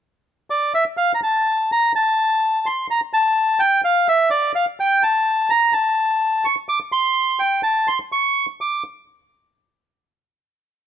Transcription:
0.50 0.73 D5 medium
0.74 0.84 E5 medium
0.97 1.12 F5 medium
1.14 1.20 A#5 medium
1.23 1.71 A5 medium
1.72 1.92 A#5 medium
1.95 2.67 A5 medium
2.66 2.87 C6 medium
2.91 3.00 A#5 medium
3.13 3.61 A5 medium
3.60 3.81 G5 medium
3.84 4.08 F5 medium
4.08 4.29 E5 medium
4.30 4.52 D5 medium
4.55 4.66 F5 medium
4.80 5.03 G5 medium
5.03 5.51 A5 medium
5.50 5.74 A#5 medium
5.73 6.46 A5 medium
6.45 6.55 C#6 medium
6.69 6.79 D6 medium
6.92 7.41 C6 medium
7.39 7.62 G5 medium
7.63 7.88 A5 medium
7.88 7.99 C6 medium
8.12 8.46 C#6 medium
8.61 8.83 D6 medium

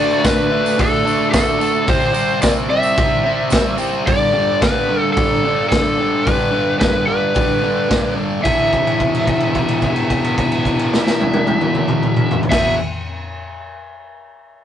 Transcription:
0.00 0.23 D3 medium
0.00 0.24 A3 medium
0.00 0.24 D4 medium
0.00 0.26 D5 loud
0.11 tambourine soft
0.24 0.50 D3 medium
0.24 0.50 A3 medium
0.24 0.51 D4 medium
0.24 0.80 B4 medium
0.24 kick loud
0.24 snare loud
0.24 open hi-hat medium
0.24 tambourine loud
0.38 tambourine soft
0.51 0.77 D3 medium
0.51 0.77 A3 medium
0.51 0.78 D4 medium
0.66 tambourine medium
0.78 1.04 D3 medium
0.78 1.05 A3 medium
0.78 1.06 D4 medium
0.78 1.30 A4 medium
0.78 kick loud
0.78 open hi-hat medium
1.05 1.31 D3 medium
1.05 1.32 A3 loud
1.05 1.32 D4 loud
1.05 tambourine medium
1.31 1.58 D3 medium
1.31 1.58 A3 medium
1.31 1.59 D4 medium
1.31 1.88 A4 medium
1.31 kick loud
1.31 snare loud
1.31 open hi-hat medium
1.31 tambourine loud
1.59 1.85 D3 medium
1.59 1.85 A3 medium
1.59 1.86 D4 medium
1.59 tambourine medium
1.75 tambourine soft
1.87 2.12 C3 medium
1.87 2.14 G3 loud
1.87 2.13 C4 loud
1.87 2.42 C5 loud
1.87 kick loud
1.87 open hi-hat medium
1.87 tambourine soft
2.00 tambourine soft
2.14 2.40 C3 medium
2.14 2.41 G3 medium
2.14 2.41 C4 medium
2.14 tambourine medium
2.28 tambourine soft
2.42 2.68 C3 medium
2.42 2.69 G3 medium
2.42 2.69 C4 medium
2.42 2.50 D5 loud
2.42 kick loud
2.42 snare loud
2.42 open hi-hat medium
2.42 tambourine loud
2.69 2.96 C3 medium
2.69 2.97 G3 medium
2.69 2.97 C4 medium
2.69 3.75 E5 loud
2.83 tambourine medium
2.96 3.23 C3 medium
2.96 3.25 G3 medium
2.96 3.25 C4 medium
2.96 kick loud
2.96 open hi-hat medium
2.96 tambourine soft
3.25 3.49 C3 medium
3.25 3.51 G3 medium
3.25 3.51 C4 medium
3.50 3.76 C3 medium
3.50 3.77 G3 medium
3.50 3.77 C4 medium
3.50 kick loud
3.50 snare loud
3.50 open hi-hat medium
3.50 tambourine loud
3.77 4.04 C3 medium
3.77 4.05 G3 medium
3.77 4.04 C4 medium
3.77 tambourine medium
4.05 4.33 G2 medium
4.05 4.33 D3 loud
4.05 4.34 G3 medium
4.05 4.63 D5 loud
4.05 kick loud
4.05 open hi-hat medium
4.33 4.61 G2 medium
4.33 4.61 D3 medium
4.33 4.62 G3 medium
4.61 4.89 G2 medium
4.61 4.88 D3 medium
4.61 4.90 G3 medium
4.61 5.12 B4 medium
4.61 kick loud
4.61 snare loud
4.61 open hi-hat medium
4.90 5.16 G2 medium
4.90 5.16 D3 medium
4.90 5.17 G3 medium
5.13 5.65 A4 medium
5.17 5.44 G2 medium
5.17 5.45 D3 loud
5.17 5.47 G3 medium
5.17 kick loud
5.17 open hi-hat medium
5.45 5.71 G2 medium
5.45 5.71 D3 medium
5.45 5.73 G3 loud
5.69 5.98 G2 medium
5.69 5.98 D3 medium
5.69 6.21 A4 medium
5.69 kick loud
5.69 snare loud
5.69 open hi-hat medium
5.74 6.00 G3 medium
5.99 6.25 G2 medium
5.99 6.25 D3 medium
5.99 6.26 G3 medium
6.22 6.74 B4 loud
6.26 6.51 G2 loud
6.26 6.51 D3 loud
6.26 6.52 G3 loud
6.26 kick loud
6.26 open hi-hat medium
6.52 6.78 G2 medium
6.52 6.79 D3 medium
6.52 6.79 G3 medium
6.79 7.06 G2 medium
6.79 7.07 D3 medium
6.79 7.08 G3 loud
6.79 7.06 B4 medium
6.79 kick loud
6.79 snare loud
6.79 open hi-hat soft
7.07 7.33 G2 medium
7.07 7.34 D3 medium
7.07 7.35 G3 medium
7.07 8.13 B4 medium
7.35 7.61 G2 medium
7.35 7.61 D3 medium
7.35 7.62 G3 medium
7.35 kick loud
7.35 open hi-hat medium
7.62 7.88 G2 medium
7.62 7.89 D3 medium
7.62 7.89 G3 medium
7.89 8.14 G2 medium
7.89 8.15 D3 medium
7.89 8.15 G3 medium
7.89 kick loud
7.89 snare loud
7.89 open hi-hat medium
8.15 8.40 G2 medium
8.15 8.42 D3 medium
8.15 8.42 G3 medium
8.41 12.42 E2 medium
8.41 12.43 B2 medium
8.41 12.44 E3 medium
8.41 12.39 E5 medium
8.45 kick medium
8.45 crash medium
8.73 kick medium
8.73 crash soft
8.87 crash soft
9.00 kick medium
9.00 crash soft
9.15 crash soft
9.27 kick medium
9.27 crash medium
9.40 crash soft
9.55 kick medium
9.55 crash soft
9.68 crash soft
9.82 kick medium
9.82 crash soft
9.96 crash soft
10.10 kick medium
10.10 crash soft
10.24 crash soft
10.38 kick medium
10.38 crash soft
10.52 crash medium
10.65 kick medium
10.65 crash soft
10.79 crash soft
10.94 snare medium
11.07 snare medium
11.21 high tom medium
11.34 high tom loud
11.47 high tom loud
11.61 mid tom loud
11.75 mid tom loud
11.88 mid tom loud
12.03 mid tom medium
12.17 mid tom medium
12.31 floor tom loud
12.43 floor tom loud
12.49 12.74 E2 medium
12.49 12.76 B2 medium
12.49 12.73 E5 medium
12.49 kick loud
12.49 snare medium
12.49 crash medium
12.53 12.76 E3 loud

